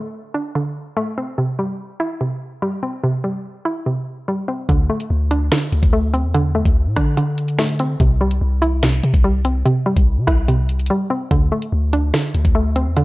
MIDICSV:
0, 0, Header, 1, 4, 480
1, 0, Start_track
1, 0, Tempo, 413793
1, 1600, Time_signature, 4, 2, 24, 8
1, 15133, End_track
2, 0, Start_track
2, 0, Title_t, "Synth pluck"
2, 0, Program_c, 0, 84
2, 0, Note_on_c, 0, 50, 97
2, 0, Note_on_c, 0, 57, 86
2, 0, Note_on_c, 0, 60, 83
2, 399, Note_on_c, 0, 62, 89
2, 628, Note_off_c, 0, 50, 0
2, 639, Note_off_c, 0, 60, 0
2, 642, Note_on_c, 0, 50, 92
2, 1107, Note_off_c, 0, 57, 0
2, 1121, Note_on_c, 0, 57, 97
2, 1366, Note_on_c, 0, 60, 77
2, 1599, Note_off_c, 0, 62, 0
2, 1601, Note_off_c, 0, 50, 0
2, 1601, Note_off_c, 0, 57, 0
2, 1601, Note_on_c, 0, 48, 96
2, 1603, Note_off_c, 0, 60, 0
2, 1842, Note_on_c, 0, 55, 84
2, 2318, Note_on_c, 0, 64, 90
2, 2548, Note_off_c, 0, 48, 0
2, 2562, Note_on_c, 0, 48, 83
2, 3029, Note_off_c, 0, 55, 0
2, 3042, Note_on_c, 0, 55, 86
2, 3280, Note_on_c, 0, 60, 79
2, 3508, Note_off_c, 0, 48, 0
2, 3519, Note_off_c, 0, 64, 0
2, 3522, Note_on_c, 0, 48, 103
2, 3746, Note_off_c, 0, 55, 0
2, 3759, Note_on_c, 0, 55, 80
2, 4237, Note_on_c, 0, 64, 89
2, 4467, Note_off_c, 0, 48, 0
2, 4480, Note_off_c, 0, 60, 0
2, 4481, Note_on_c, 0, 48, 89
2, 4953, Note_off_c, 0, 55, 0
2, 4967, Note_on_c, 0, 55, 87
2, 5199, Note_on_c, 0, 60, 80
2, 5438, Note_off_c, 0, 64, 0
2, 5438, Note_on_c, 0, 50, 99
2, 5440, Note_off_c, 0, 60, 0
2, 5441, Note_off_c, 0, 48, 0
2, 5443, Note_off_c, 0, 55, 0
2, 5679, Note_on_c, 0, 57, 81
2, 6159, Note_on_c, 0, 62, 85
2, 6386, Note_off_c, 0, 50, 0
2, 6400, Note_on_c, 0, 50, 86
2, 6863, Note_off_c, 0, 57, 0
2, 6877, Note_on_c, 0, 57, 92
2, 7118, Note_on_c, 0, 60, 82
2, 7347, Note_off_c, 0, 50, 0
2, 7359, Note_off_c, 0, 62, 0
2, 7361, Note_on_c, 0, 50, 102
2, 7584, Note_off_c, 0, 57, 0
2, 7598, Note_on_c, 0, 57, 88
2, 8079, Note_on_c, 0, 62, 91
2, 8307, Note_off_c, 0, 50, 0
2, 8319, Note_off_c, 0, 60, 0
2, 8321, Note_on_c, 0, 50, 91
2, 8787, Note_off_c, 0, 57, 0
2, 8801, Note_on_c, 0, 57, 97
2, 9046, Note_on_c, 0, 60, 82
2, 9280, Note_off_c, 0, 57, 0
2, 9280, Note_off_c, 0, 62, 0
2, 9280, Note_on_c, 0, 48, 90
2, 9281, Note_off_c, 0, 50, 0
2, 9283, Note_off_c, 0, 60, 0
2, 9521, Note_on_c, 0, 55, 88
2, 9997, Note_on_c, 0, 64, 93
2, 10227, Note_off_c, 0, 48, 0
2, 10241, Note_on_c, 0, 48, 90
2, 10708, Note_off_c, 0, 55, 0
2, 10722, Note_on_c, 0, 55, 89
2, 10960, Note_on_c, 0, 60, 78
2, 11186, Note_off_c, 0, 48, 0
2, 11198, Note_off_c, 0, 64, 0
2, 11200, Note_on_c, 0, 48, 103
2, 11425, Note_off_c, 0, 55, 0
2, 11439, Note_on_c, 0, 55, 85
2, 11916, Note_on_c, 0, 64, 89
2, 12147, Note_off_c, 0, 48, 0
2, 12160, Note_off_c, 0, 60, 0
2, 12161, Note_on_c, 0, 48, 94
2, 12633, Note_off_c, 0, 55, 0
2, 12647, Note_on_c, 0, 55, 93
2, 12879, Note_on_c, 0, 60, 83
2, 13118, Note_off_c, 0, 64, 0
2, 13119, Note_off_c, 0, 60, 0
2, 13119, Note_on_c, 0, 50, 103
2, 13120, Note_off_c, 0, 48, 0
2, 13123, Note_off_c, 0, 55, 0
2, 13361, Note_on_c, 0, 57, 82
2, 13840, Note_on_c, 0, 62, 87
2, 14066, Note_off_c, 0, 50, 0
2, 14080, Note_on_c, 0, 50, 90
2, 14543, Note_off_c, 0, 57, 0
2, 14557, Note_on_c, 0, 57, 90
2, 14800, Note_on_c, 0, 60, 82
2, 15028, Note_off_c, 0, 50, 0
2, 15040, Note_off_c, 0, 62, 0
2, 15042, Note_on_c, 0, 50, 103
2, 15133, Note_off_c, 0, 50, 0
2, 15133, Note_off_c, 0, 57, 0
2, 15133, Note_off_c, 0, 60, 0
2, 15133, End_track
3, 0, Start_track
3, 0, Title_t, "808-style bass"
3, 0, Program_c, 1, 38
3, 5440, Note_on_c, 1, 38, 111
3, 5670, Note_off_c, 1, 38, 0
3, 5920, Note_on_c, 1, 38, 104
3, 6380, Note_off_c, 1, 38, 0
3, 6640, Note_on_c, 1, 38, 99
3, 6755, Note_off_c, 1, 38, 0
3, 6760, Note_on_c, 1, 38, 105
3, 7239, Note_on_c, 1, 40, 100
3, 7257, Note_off_c, 1, 38, 0
3, 7696, Note_off_c, 1, 40, 0
3, 7719, Note_on_c, 1, 38, 108
3, 7960, Note_on_c, 1, 45, 96
3, 7978, Note_off_c, 1, 38, 0
3, 8074, Note_off_c, 1, 45, 0
3, 8080, Note_on_c, 1, 50, 103
3, 9234, Note_off_c, 1, 50, 0
3, 9280, Note_on_c, 1, 36, 113
3, 9741, Note_off_c, 1, 36, 0
3, 9760, Note_on_c, 1, 36, 106
3, 10451, Note_off_c, 1, 36, 0
3, 10480, Note_on_c, 1, 48, 103
3, 10593, Note_off_c, 1, 48, 0
3, 10600, Note_on_c, 1, 36, 106
3, 11176, Note_off_c, 1, 36, 0
3, 11560, Note_on_c, 1, 36, 107
3, 11801, Note_on_c, 1, 48, 97
3, 11818, Note_off_c, 1, 36, 0
3, 11914, Note_off_c, 1, 48, 0
3, 11921, Note_on_c, 1, 36, 109
3, 12641, Note_off_c, 1, 36, 0
3, 13120, Note_on_c, 1, 38, 107
3, 13351, Note_off_c, 1, 38, 0
3, 13600, Note_on_c, 1, 38, 105
3, 14061, Note_off_c, 1, 38, 0
3, 14320, Note_on_c, 1, 38, 102
3, 14435, Note_off_c, 1, 38, 0
3, 14440, Note_on_c, 1, 38, 109
3, 14920, Note_on_c, 1, 40, 95
3, 14938, Note_off_c, 1, 38, 0
3, 15133, Note_off_c, 1, 40, 0
3, 15133, End_track
4, 0, Start_track
4, 0, Title_t, "Drums"
4, 5440, Note_on_c, 9, 36, 112
4, 5440, Note_on_c, 9, 42, 71
4, 5556, Note_off_c, 9, 36, 0
4, 5556, Note_off_c, 9, 42, 0
4, 5800, Note_on_c, 9, 42, 72
4, 5916, Note_off_c, 9, 42, 0
4, 6159, Note_on_c, 9, 42, 80
4, 6275, Note_off_c, 9, 42, 0
4, 6399, Note_on_c, 9, 42, 89
4, 6400, Note_on_c, 9, 38, 116
4, 6515, Note_off_c, 9, 42, 0
4, 6516, Note_off_c, 9, 38, 0
4, 6640, Note_on_c, 9, 42, 77
4, 6756, Note_off_c, 9, 42, 0
4, 6759, Note_on_c, 9, 36, 99
4, 6760, Note_on_c, 9, 42, 75
4, 6875, Note_off_c, 9, 36, 0
4, 6876, Note_off_c, 9, 42, 0
4, 7120, Note_on_c, 9, 42, 84
4, 7236, Note_off_c, 9, 42, 0
4, 7360, Note_on_c, 9, 42, 72
4, 7476, Note_off_c, 9, 42, 0
4, 7719, Note_on_c, 9, 36, 93
4, 7720, Note_on_c, 9, 42, 75
4, 7835, Note_off_c, 9, 36, 0
4, 7836, Note_off_c, 9, 42, 0
4, 8079, Note_on_c, 9, 37, 99
4, 8080, Note_on_c, 9, 36, 100
4, 8080, Note_on_c, 9, 42, 79
4, 8195, Note_off_c, 9, 37, 0
4, 8196, Note_off_c, 9, 36, 0
4, 8196, Note_off_c, 9, 42, 0
4, 8320, Note_on_c, 9, 42, 87
4, 8436, Note_off_c, 9, 42, 0
4, 8560, Note_on_c, 9, 42, 77
4, 8676, Note_off_c, 9, 42, 0
4, 8679, Note_on_c, 9, 42, 77
4, 8795, Note_off_c, 9, 42, 0
4, 8800, Note_on_c, 9, 38, 115
4, 8916, Note_off_c, 9, 38, 0
4, 8920, Note_on_c, 9, 42, 80
4, 9036, Note_off_c, 9, 42, 0
4, 9040, Note_on_c, 9, 42, 84
4, 9156, Note_off_c, 9, 42, 0
4, 9280, Note_on_c, 9, 36, 109
4, 9280, Note_on_c, 9, 42, 73
4, 9396, Note_off_c, 9, 36, 0
4, 9396, Note_off_c, 9, 42, 0
4, 9640, Note_on_c, 9, 42, 71
4, 9756, Note_off_c, 9, 42, 0
4, 10000, Note_on_c, 9, 42, 79
4, 10116, Note_off_c, 9, 42, 0
4, 10240, Note_on_c, 9, 42, 91
4, 10241, Note_on_c, 9, 38, 118
4, 10356, Note_off_c, 9, 42, 0
4, 10357, Note_off_c, 9, 38, 0
4, 10480, Note_on_c, 9, 42, 75
4, 10596, Note_off_c, 9, 42, 0
4, 10600, Note_on_c, 9, 36, 99
4, 10600, Note_on_c, 9, 42, 80
4, 10716, Note_off_c, 9, 36, 0
4, 10716, Note_off_c, 9, 42, 0
4, 10960, Note_on_c, 9, 42, 85
4, 11076, Note_off_c, 9, 42, 0
4, 11201, Note_on_c, 9, 42, 72
4, 11317, Note_off_c, 9, 42, 0
4, 11560, Note_on_c, 9, 36, 90
4, 11561, Note_on_c, 9, 42, 73
4, 11676, Note_off_c, 9, 36, 0
4, 11677, Note_off_c, 9, 42, 0
4, 11920, Note_on_c, 9, 37, 101
4, 11921, Note_on_c, 9, 36, 95
4, 11921, Note_on_c, 9, 42, 78
4, 12036, Note_off_c, 9, 37, 0
4, 12037, Note_off_c, 9, 36, 0
4, 12037, Note_off_c, 9, 42, 0
4, 12161, Note_on_c, 9, 42, 88
4, 12277, Note_off_c, 9, 42, 0
4, 12401, Note_on_c, 9, 42, 73
4, 12517, Note_off_c, 9, 42, 0
4, 12521, Note_on_c, 9, 42, 64
4, 12601, Note_off_c, 9, 42, 0
4, 12601, Note_on_c, 9, 42, 66
4, 12717, Note_off_c, 9, 42, 0
4, 13121, Note_on_c, 9, 36, 110
4, 13121, Note_on_c, 9, 42, 70
4, 13237, Note_off_c, 9, 36, 0
4, 13237, Note_off_c, 9, 42, 0
4, 13481, Note_on_c, 9, 42, 71
4, 13597, Note_off_c, 9, 42, 0
4, 13840, Note_on_c, 9, 42, 77
4, 13956, Note_off_c, 9, 42, 0
4, 14080, Note_on_c, 9, 42, 87
4, 14081, Note_on_c, 9, 38, 117
4, 14196, Note_off_c, 9, 42, 0
4, 14197, Note_off_c, 9, 38, 0
4, 14320, Note_on_c, 9, 42, 77
4, 14436, Note_off_c, 9, 42, 0
4, 14440, Note_on_c, 9, 36, 100
4, 14440, Note_on_c, 9, 42, 78
4, 14556, Note_off_c, 9, 36, 0
4, 14556, Note_off_c, 9, 42, 0
4, 14800, Note_on_c, 9, 42, 82
4, 14916, Note_off_c, 9, 42, 0
4, 15040, Note_on_c, 9, 42, 71
4, 15133, Note_off_c, 9, 42, 0
4, 15133, End_track
0, 0, End_of_file